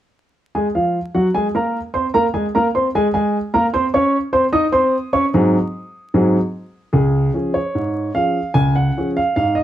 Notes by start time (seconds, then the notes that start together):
0.55 G#3 G#4 G#5
0.75 F3 F4 F5
1.14 F#3 F#4 F#5
1.35 G#3 G#4 G#5
1.55 A#3 A#4 A#5
1.94 C4 C5 C6
2.14 A#3 A#4 A#5
2.34 G#3 G#4 G#5
2.55 A#3 A#4 A#5
2.75 C4 C5 C6
2.95 G#3 G#4 G#5
3.14 G#3 G#4 G#5
3.54 A#3 A#4 A#5
3.74 C4 C5 C6
3.94 C#4 C#5 C#6
4.33 C4 C5 C6
4.53 D#4 D#5 D#6
4.72 C4 C5 C6
5.13 C#4 C#5 C#6
5.34 G#2 F#3 C4 G#4
6.14 G#2 F#3 C4 G#4
6.93 C#2 G#4
7.34 F3 C#4 G#4
7.54 C#5
7.75 G#2
8.15 F3 C#4 G#4 F5
8.54 C#2 G#5
8.76 F#5
8.97 F3 C#4 G#4
9.17 F5
9.36 G#2 F5
9.55 D#5